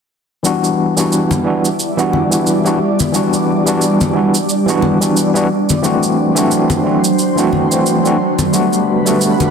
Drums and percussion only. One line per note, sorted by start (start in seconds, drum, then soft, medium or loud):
0.45 shaker soft
0.64 shaker soft
0.98 shaker medium
1.12 shaker soft
1.31 high conga medium
1.31 shaker soft
1.65 shaker medium
1.79 shaker soft
1.99 shaker soft
2.13 high conga medium
2.32 shaker medium
2.47 shaker soft
2.66 shaker soft
3.00 high conga medium
3.00 shaker medium
3.14 shaker soft
3.33 shaker soft
3.67 shaker medium
3.82 shaker soft
4.01 high conga medium
4.01 shaker soft
4.35 shaker medium
4.49 shaker medium
4.68 shaker soft
4.82 high conga medium
5.02 shaker medium
5.17 shaker medium
5.36 shaker soft
5.69 high conga medium
5.69 shaker medium
5.84 shaker medium
6.03 shaker soft
6.37 shaker medium
6.51 shaker soft
6.70 high conga loud
6.70 shaker soft
7.04 shaker medium
7.19 shaker soft
7.38 shaker soft
7.53 high conga medium
7.72 shaker medium
7.86 shaker soft
8.06 shaker soft
8.39 high conga medium
8.39 shaker medium
8.54 shaker medium
8.73 shaker soft
9.07 shaker medium
9.21 shaker medium
9.40 high conga medium
9.40 shaker soft